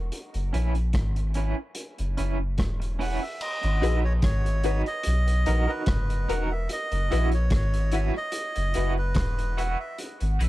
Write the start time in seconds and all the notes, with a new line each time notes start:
Already playing: E1
0.12 closed hi-hat
0.34 F#1, closed hi-hat
0.53 A#1 C#4 E4 B4, closed hi-hat
0.75 closed hi-hat
0.93 G#1, kick, cross-stick, closed hi-hat
1.16 closed hi-hat
1.34 C#4 E4 B4, closed hi-hat
1.75 closed hi-hat
1.98 F#1, closed hi-hat
2.17 F#1 C#4 E4 B4, closed hi-hat
2.58 E1, kick, cross-stick, closed hi-hat
2.80 muted clean electric guitar stroke, closed hi-hat
2.99 C#4 E4 B4 F#5, open hi-hat
3.22 E5
3.41 D#5, crash
3.63 G#1, closed hi-hat
3.82 A#1 D#4 F#4 G#4 B4, closed hi-hat
4.04 C#5
4.22 G#1 C#5, kick, cross-stick, closed hi-hat
4.46 closed hi-hat
4.64 D#4 F#4 G#4 B4, closed hi-hat
4.86 D#5, closed hi-hat
5.03 B1, closed hi-hat
5.28 closed hi-hat
5.46 A#1 D#4 F#4 A#4 B4, closed hi-hat
5.67 D#4 F#4 A#4 B4
5.86 F#1, kick, cross-stick, closed hi-hat
6.10 closed hi-hat
6.28 E1 D#4 F#4 A#4 B4 F#5, closed hi-hat
6.52 E5
6.69 D#5, closed hi-hat
6.92 F#1, closed hi-hat
7.11 A#1 E4 F#4 B4, closed hi-hat
7.32 C#5, closed hi-hat
7.50 G#1, kick, cross-stick, closed hi-hat
7.56 C#5
7.74 closed hi-hat
7.92 E4 F#4 B4, closed hi-hat
8.17 D#5
8.32 closed hi-hat
8.56 F#1, closed hi-hat
8.74 F#1 E4 F#4 B4, closed hi-hat
8.98 B4
9.15 E1, kick, cross-stick, closed hi-hat
9.39 muted clean electric guitar stroke, closed hi-hat
9.57 E4 F#4 B4 F#5, closed hi-hat
9.80 E5
9.98 closed hi-hat
10.20 G#1, closed hi-hat
10.39 A#1 D#4 F#4 G#4 B4, closed hi-hat